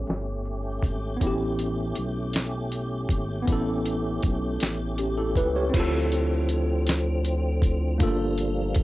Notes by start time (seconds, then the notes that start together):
Already playing: G3 A3 B3 C#4 G4 C#5
0.07 G1, snare, closed hi-hat
0.45 closed hi-hat
0.82 G#1, kick, closed hi-hat
1.17 B3 C#4
1.21 A1 A3 C#4 E4 G4, kick, closed hi-hat
1.27 G4
1.59 closed hi-hat
1.95 B1, closed hi-hat
2.33 snare, closed hi-hat
2.72 closed hi-hat
3.09 G#1, kick, closed hi-hat
3.43 B3 C#4
3.48 A1 E4, kick, closed hi-hat
3.53 A4
3.86 closed hi-hat
4.23 B1, kick, closed hi-hat
4.60 A1, snare, closed hi-hat
4.98 C#4 G4, closed hi-hat
5.18 E4 A4
5.36 C#2 E4 B4, kick, closed hi-hat
5.56 G4 C#5
5.69 C4 E4
5.73 D2 D3 F3 C4 F4, kick, closed hi-hat, crash
5.79 A4
6.12 closed hi-hat
6.49 closed hi-hat
6.87 snare, closed hi-hat
7.25 closed hi-hat
7.62 kick, closed hi-hat
7.98 G1 G3 A3 A#3 D4 F4, kick, closed hi-hat
8.03 A#3 A4
8.38 closed hi-hat
8.75 kick, closed hi-hat